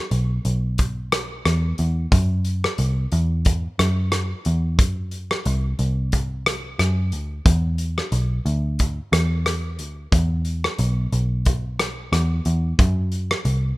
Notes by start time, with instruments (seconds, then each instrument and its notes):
0.11 picked electric bass B1, closed hi-hat
0.45 picked electric bass B1, closed hi-hat
0.78 kick, closed hi-hat
1.12 cross-stick, closed hi-hat
1.45 picked electric bass E2, cross-stick, closed hi-hat
1.78 picked electric bass E2, closed hi-hat
2.12 picked electric bass F#2, kick, closed hi-hat
2.45 closed hi-hat
2.64 cross-stick
2.78 picked electric bass C2, closed hi-hat
3.12 picked electric bass E2, closed hi-hat
3.45 kick, closed hi-hat
3.79 picked electric bass F#2, cross-stick, closed hi-hat
4.12 cross-stick, closed hi-hat
4.45 picked electric bass E2, closed hi-hat
4.79 picked electric bass F#2, kick, closed hi-hat
5.11 closed hi-hat
5.31 cross-stick
5.45 picked electric bass C2, closed hi-hat
5.79 picked electric bass C2, closed hi-hat
6.12 kick, closed hi-hat
6.46 cross-stick, closed hi-hat
6.79 picked electric bass F#2, cross-stick, closed hi-hat
7.12 picked electric bass D2, closed hi-hat
7.46 picked electric bass E2, kick, closed hi-hat
7.78 closed hi-hat
7.98 cross-stick
8.12 picked electric bass B1, closed hi-hat
8.46 picked electric bass D2, closed hi-hat
8.79 kick, closed hi-hat
9.12 picked electric bass E2, cross-stick, closed hi-hat
9.46 cross-stick, closed hi-hat
9.79 picked electric bass D2, closed hi-hat
10.12 picked electric bass E2, kick, closed hi-hat
10.45 closed hi-hat
10.64 cross-stick
10.79 picked electric bass B1, closed hi-hat
11.12 picked electric bass B1, closed hi-hat
11.45 kick, closed hi-hat
11.79 cross-stick, closed hi-hat
12.12 picked electric bass E2, cross-stick, closed hi-hat
12.45 picked electric bass E2, closed hi-hat
12.79 picked electric bass F#2, kick, closed hi-hat
13.12 closed hi-hat
13.31 cross-stick
13.45 picked electric bass C2, closed hi-hat